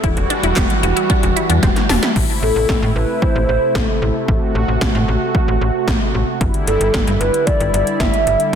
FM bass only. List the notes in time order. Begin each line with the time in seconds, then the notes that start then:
0.04 E1
0.17 E1
0.43 E1
0.57 E1
0.83 E1
1.23 E1
1.50 E2
1.63 E1
1.89 E1
2.16 A1
2.42 A1
2.56 A1
2.69 A1
2.82 A2
2.96 A1
3.36 A1
3.49 A1
3.75 A1
4.02 A1
4.28 A1
4.55 A1
4.68 A1
4.82 A1
4.95 A2
5.08 A1
5.48 A1
5.61 A1
5.88 A1
6.14 A1
6.41 G1
6.67 G1
6.81 G1
6.94 G1
7.07 G2
7.21 G1
7.60 G1
7.74 G1
8.00 G1
8.27 G1